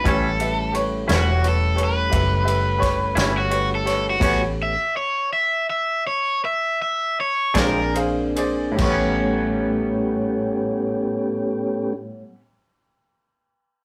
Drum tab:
CC |------------|x-----------|x-----------|
RD |xxxxxxxxxxxx|x--------xxx|------------|
SD |---o----oo-o|---------o--|------------|
BD |o-----o-o---|o--------o--|o-----------|